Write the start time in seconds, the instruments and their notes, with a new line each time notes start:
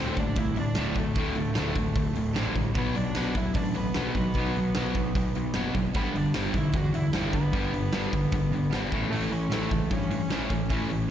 Already playing: picked electric bass D1, distorted electric guitar D2 A2 D3, overdriven electric guitar C4 C5
0.15 picked electric bass F#1, distorted electric guitar D2 A2, overdriven electric guitar D4, kick, open hi-hat
0.20 overdriven electric guitar D5
0.35 picked electric bass C2, distorted electric guitar D2 A2, overdriven electric guitar E4, kick, open hi-hat
0.39 overdriven electric guitar E5
0.55 distorted electric guitar D2 A2, open hi-hat
0.59 overdriven electric guitar D4 D5
0.75 picked electric bass D1, distorted electric guitar D2 A2 D3, snare, open hi-hat
0.94 picked electric bass D1, distorted electric guitar D2 A2, overdriven electric guitar A3, kick, open hi-hat
0.99 overdriven electric guitar D2 A2 A4
1.14 picked electric bass D1, distorted electric guitar D2 A2 D3, kick, open hi-hat
1.18 overdriven electric guitar D2
1.34 picked electric bass D1, distorted electric guitar D2 A2, open hi-hat
1.38 overdriven electric guitar D2
1.53 picked electric bass D1, distorted electric guitar D2 A2 D3, snare, open hi-hat
1.58 overdriven electric guitar D2 A2 D3
1.74 picked electric bass D1, distorted electric guitar D2 A2, kick, open hi-hat
1.78 overdriven electric guitar A2
1.93 picked electric bass D1, distorted electric guitar D2 A2, kick, open hi-hat
2.13 picked electric bass D1, distorted electric guitar D2 A2, open hi-hat
2.33 picked electric bass A1, distorted electric guitar D2 A2 D3, snare, open hi-hat
2.54 picked electric bass C2, distorted electric guitar D2 A2, kick, open hi-hat
2.74 picked electric bass B1, distorted electric guitar B2 F#3 B3, overdriven electric guitar B3, kick, open hi-hat
2.79 overdriven electric guitar B4
2.95 picked electric bass B1, distorted electric guitar B2 F#3, overdriven electric guitar D4 D5, open hi-hat
3.15 picked electric bass B1, distorted electric guitar B2 F#3 B3, snare, open hi-hat
3.35 picked electric bass D1, distorted electric guitar B2 F#3, overdriven electric guitar E4 E5, kick, open hi-hat
3.54 picked electric bass A1, distorted electric guitar B2 F#3, overdriven electric guitar D4 D5, kick, open hi-hat
3.74 distorted electric guitar B2 F#3, overdriven electric guitar B3 B4, open hi-hat
3.94 picked electric bass B1, distorted electric guitar B2 F#3 B3, snare, open hi-hat
4.15 picked electric bass B1, distorted electric guitar B2 F#3, overdriven electric guitar B3 B4, kick, open hi-hat
4.34 picked electric bass B1, distorted electric guitar B2 F#3 B3, kick, open hi-hat
4.56 picked electric bass B1, distorted electric guitar B2 F#3, open hi-hat
4.75 picked electric bass B1, distorted electric guitar B2 F#3 B3, snare, open hi-hat
4.94 picked electric bass B1, distorted electric guitar B2 F#3, kick, open hi-hat
5.15 picked electric bass B1, distorted electric guitar B2 F#3, kick, open hi-hat
5.35 picked electric bass B1, distorted electric guitar B2 F#3, open hi-hat
5.54 picked electric bass F#1, distorted electric guitar B2 F#3 B3, snare, open hi-hat
5.74 picked electric bass F#1, distorted electric guitar B2 F#3, kick, open hi-hat
5.94 picked electric bass G1, distorted electric guitar G2 D3 G3, overdriven electric guitar B3 B4, kick, open hi-hat
6.14 picked electric bass G1, distorted electric guitar G2 D3, overdriven electric guitar D5, open hi-hat
6.18 overdriven electric guitar D4
6.34 picked electric bass G1, distorted electric guitar G2 D3 G3, snare, open hi-hat
6.54 picked electric bass B1, distorted electric guitar G2 D3, overdriven electric guitar E4 E5, kick, open hi-hat
6.72 picked electric bass E2, distorted electric guitar G2 D3, overdriven electric guitar F#4 F#5, kick, open hi-hat
6.93 distorted electric guitar G2 D3, overdriven electric guitar E4 E5, open hi-hat
7.13 picked electric bass G1, distorted electric guitar G2 D3 G3, snare, open hi-hat
7.33 picked electric bass G1, distorted electric guitar G2 D3, overdriven electric guitar B3 B4, kick, open hi-hat
7.52 picked electric bass G1, distorted electric guitar G2 D3 G3, kick, open hi-hat
7.72 picked electric bass G1, distorted electric guitar G2 D3, open hi-hat
7.92 picked electric bass G1, distorted electric guitar G2 D3 G3, snare, open hi-hat
8.11 picked electric bass G1, distorted electric guitar G2 D3, kick, open hi-hat
8.31 picked electric bass G1, distorted electric guitar G2 D3, kick, open hi-hat
8.50 picked electric bass G1, distorted electric guitar G2 D3, open hi-hat
8.70 picked electric bass G1, distorted electric guitar G2 D3 G3, snare, open hi-hat
8.90 picked electric bass A1, distorted electric guitar A2 E3 A3, kick, open hi-hat
9.09 picked electric bass A1, distorted electric guitar A2 E3 A3, overdriven electric guitar A3 A4, open hi-hat
9.29 picked electric bass A1, distorted electric guitar A2 E3, overdriven electric guitar C#4 C#5, open hi-hat
9.49 picked electric bass A1, distorted electric guitar A2 E3 A3, overdriven electric guitar A4, snare, open hi-hat
9.53 overdriven electric guitar A3
9.70 picked electric bass C#2, distorted electric guitar A2 E3, kick, open hi-hat
9.90 picked electric bass G2, distorted electric guitar A2 E3, overdriven electric guitar C#4 C#5, kick, open hi-hat
10.11 distorted electric guitar A2 E3, open hi-hat
10.29 picked electric bass A1, distorted electric guitar A2 E3 A3, snare, open hi-hat
10.50 picked electric bass A1, distorted electric guitar A2 E3, kick, open hi-hat
10.69 picked electric bass A1, distorted electric guitar A2 E3 A3, kick, open hi-hat
10.88 picked electric bass A1, distorted electric guitar A2 E3, open hi-hat
11.07 picked electric bass A1